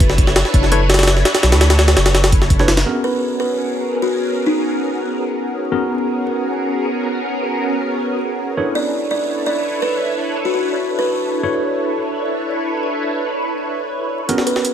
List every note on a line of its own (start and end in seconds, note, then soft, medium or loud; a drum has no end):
0.00 0.44 F#1 medium
0.00 1.23 D4 loud
0.00 1.23 E4 loud
0.00 1.23 A4 loud
0.00 1.23 B4 medium
0.00 1.23 C#5 loud
0.00 kick loud
0.00 closed hi-hat medium
0.10 snare medium
0.18 kick loud
0.18 closed hi-hat medium
0.27 snare soft
0.36 snare loud
0.36 closed hi-hat medium
0.45 snare soft
0.54 1.24 F#1 loud
0.54 kick loud
0.54 closed hi-hat medium
0.63 snare soft
0.72 0.80 D4 medium
0.72 0.80 E4 medium
0.72 0.80 A4 medium
0.72 0.80 B4 medium
0.72 0.80 C#5 loud
0.72 closed hi-hat medium
0.90 snare loud
0.90 closed hi-hat medium
0.94 snare loud
0.94 closed hi-hat medium
0.99 snare medium
0.99 closed hi-hat medium
1.03 snare medium
1.03 closed hi-hat medium
1.07 snare loud
1.07 closed hi-hat medium
1.17 snare soft
1.25 snare loud
1.25 closed hi-hat medium
1.35 snare loud
1.35 closed hi-hat medium
1.43 1.54 B1 loud
1.43 2.30 D4 loud
1.43 2.30 E4 medium
1.43 2.30 A4 medium
1.43 2.30 B4 medium
1.43 2.30 C#5 loud
1.43 snare loud
1.43 closed hi-hat medium
1.52 1.95 D2 medium
1.52 snare loud
1.52 closed hi-hat medium
1.61 snare loud
1.61 closed hi-hat medium
1.70 snare loud
1.70 closed hi-hat medium
1.79 snare loud
1.79 closed hi-hat medium
1.88 snare loud
1.88 closed hi-hat medium
1.97 2.67 F#1 loud
1.97 snare loud
1.97 closed hi-hat medium
2.06 snare loud
2.06 closed hi-hat medium
2.15 snare loud
2.15 closed hi-hat medium
2.24 snare loud
2.24 closed hi-hat medium
2.32 kick loud
2.32 closed hi-hat medium
2.42 snare soft
2.50 kick medium
2.50 closed hi-hat medium
2.59 2.73 D4 medium
2.59 2.73 E4 medium
2.59 2.73 A4 medium
2.59 2.73 B4 medium
2.59 2.73 C#5 medium
2.59 snare soft
2.68 2.84 F#1 medium
2.68 snare loud
2.68 closed hi-hat medium
2.77 snare loud
2.77 closed hi-hat medium
2.86 5.70 B3 medium
2.86 5.70 C#4 medium
2.86 5.70 F#4 medium
2.86 5.70 G#4 medium
2.86 5.70 A#4 medium
3.04 3.26 B4 medium
3.40 3.61 B4 medium
4.02 4.24 F#4 medium
4.46 4.97 D#4 medium
5.72 8.55 B3 medium
5.72 8.55 C#4 medium
5.72 8.55 F#4 medium
5.72 8.55 G#4 medium
5.72 8.55 A#4 medium
8.57 11.41 D4 medium
8.57 11.41 E4 medium
8.57 11.41 A4 medium
8.57 11.41 B4 medium
8.57 11.41 C#5 medium
8.75 8.97 D5 medium
9.11 9.32 D5 medium
9.46 9.68 D5 medium
9.82 10.04 B4 medium
10.45 10.51 F#4 medium
10.54 10.60 F#4 medium
10.99 11.34 B4 medium
11.43 14.27 D4 medium
11.43 14.27 E4 medium
11.43 14.27 A4 medium
11.43 14.27 B4 medium
11.43 14.27 C#5 medium
14.29 14.74 B3 medium
14.29 14.74 C#4 medium
14.29 14.74 F#4 medium
14.29 14.74 G#4 medium
14.29 14.74 A#4 medium
14.29 closed hi-hat medium
14.38 snare soft
14.47 14.68 B4 medium
14.47 closed hi-hat medium
14.56 snare soft
14.65 closed hi-hat medium